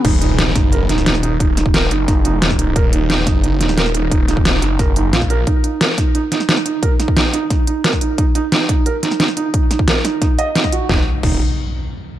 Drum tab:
CC |x---------------|----------------|----------------|----------------|
HH |x-x-x-x-x-x-x-x-|x-x-x-x-x-x-x-x-|x-x-x-x-x-x-x-x-|x-x-x-x-x-x-x-x-|
SD |----o-o---oooo--|--o-o---o---oo--|----o-o---oooo--|--o-o---o---oo--|
BD |o-----o---------|o--o----o----o--|o-----o---------|o--o----o----o--|

CC |----------------|----------------|----------------|----------------|
HH |x-x-x-x-x-x-x-x-|x-x-x-x-x-x-x-x-|x-x-x-x-x-x-x-x-|x-x-x-x-x-x-x-x-|
SD |----o-o---oooo--|--o-o---o---oo--|----o-----oooo--|--o-o-o-o---oo--|
BD |o-----o---------|o--o----o----o--|o-----o---------|o--o----o----o--|

CC |----x-----------|
HH |----------------|
SD |o---------------|
BD |o---o-----------|